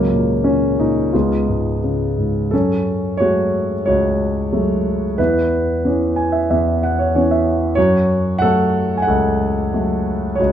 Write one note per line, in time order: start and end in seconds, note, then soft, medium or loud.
0.00 1.10 C#2 soft
0.00 0.46 C#3 medium
0.00 1.11 F#3 soft
0.00 0.49 A#3 medium
0.13 0.78 A#2 soft
0.44 1.12 C#3 soft
0.44 0.80 C#4 medium
0.79 1.13 A#2 soft
0.79 1.15 D#4 medium
1.13 2.48 C#2 soft
1.13 2.49 G#3 soft
1.13 2.49 B3 soft
1.13 1.79 F4 soft
1.49 2.17 G#2 soft
1.84 2.50 C#3 soft
2.18 2.51 G#2 soft
2.51 5.15 F#2 soft
2.51 3.17 C#4 medium
2.51 3.21 A4 medium
3.17 3.74 F#3 soft
3.17 3.83 F#4 medium
3.17 3.81 C#5 medium
3.21 3.74 G#3 soft
3.21 3.74 A3 soft
3.86 5.14 C#2 soft
3.86 5.15 F#4 soft
3.86 5.22 C#5 medium
4.52 5.05 F#3 soft
4.52 5.05 G#3 soft
4.52 5.06 A3 soft
5.18 6.49 E2 soft
5.18 7.09 E4 medium
5.18 7.09 B4 medium
5.85 6.37 E3 soft
5.85 6.36 B3 soft
5.85 6.37 C#4 soft
6.16 6.32 G#5 medium
6.32 6.48 E5 soft
6.50 7.73 E2 medium
6.50 6.79 E5 medium
6.83 6.97 F#5 medium
6.99 7.13 C#5 medium
7.15 7.65 E3 soft
7.15 7.65 B3 soft
7.15 7.66 C#4 soft
7.15 7.29 C#5 medium
7.31 7.75 E5 medium
7.75 10.36 F#2 medium
7.75 8.38 F#4 medium
7.75 8.43 C#5 medium
8.39 8.94 F#3 soft
8.39 8.96 A4 medium
8.39 8.95 F#5 medium
8.44 8.95 A3 medium
8.97 9.06 G#5 medium
9.02 10.40 F#5 medium
9.07 10.35 C#2 medium
9.07 10.35 A4 medium
9.73 10.26 F#3 soft
9.73 10.26 A3 soft
10.35 10.52 F#4 medium
10.35 10.52 C#5 medium
10.40 10.52 C#2 medium